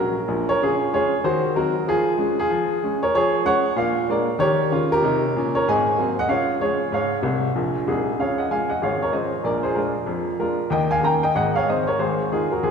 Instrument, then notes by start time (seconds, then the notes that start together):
upright piano
Already playing: F#3 C#4 F#4 A#4
0.28 A#1 A#2
0.49 A#4 C#5
0.62 C#3 F4 G#4
0.93 G#3 C#4 F4 G#4 C#5
1.24 D#3 F#4 C5
1.56 F#3 C4 D#4 F#4 A#4
1.88 F3 F4 G#4
2.17 G#3 C#4
2.39 F4 G#4
2.50 F3
2.84 G#3 C#4
3.03 A#4 C#5
3.15 F3 G#4 C#5
3.45 G#3 C#4 C#5 F#5
3.76 A#2 D4 D5 F5
4.09 G#3 A#3 D4 A#4 D5
4.39 D#3 G4 A#4 C#5
4.72 C#3 F4
4.92 G4 A#4
5.02 C3 D#4
5.36 A#2 C#4
5.55 A#4 C#5
5.68 G#2 C4 D#5 G#5
5.98 F#3 A#3 C4
6.19 D#5 F#5
6.29 C#3 F4 C#5 F5
6.60 F3 G#3 C#4 G#4 C#5
6.92 G#2 C#5 F5
7.22 C2 C3
7.56 A#1 A#2
7.87 C2 C3 D#4 G#4
8.19 C#2 C#3 C#5 F5
8.38 D#5 F#5
8.50 F3 G#3 C#4 F5 G#5
8.69 D#5 F#5
8.82 G#1 G#2 C#5 F5
9.02 A#4 C#5
9.12 F3 G#3 C#4 C5 D#5
9.44 A#1 A#2 A#4 D5
9.63 G#4 C5
9.75 F3 G#3 D4 F4 A#4
10.06 F2 F3
10.39 F3 G#3 D4 F4 A#4
10.70 D#2 D#3 D#5 G5
10.91 F5 G#5
11.03 D#3 A#3 C#4 G5 A#5
11.23 D#5 G5
11.35 G#1 G#2 D#5 F#5
11.56 C#5 F5
11.68 D#3 G#3 C4 C5 D#5
11.87 A#4 C#5
11.99 G#1 G#2 G#4 C5
12.32 D#3 G#3 D#4 F4 G#4
12.52 F#4 A#4
12.63 D#2 D#3 F4 G#4